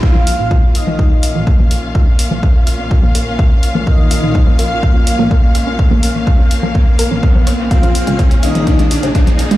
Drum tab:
HH |--o---o---o---o-|--o---o---o---o-|--o---o---o---o-|--o---o---o---o-|
CG |-O-----O-----O--|---O-----O-----O|-----O-----O----|-O-----O-----O--|
BD |o---o---o---o---|o---o---o---o---|o---o---o---o---|o---o---o---o---|

HH |xxoxxxoxxxoxxxox|
CG |-O-----O-----O--|
BD |o---o---o---o---|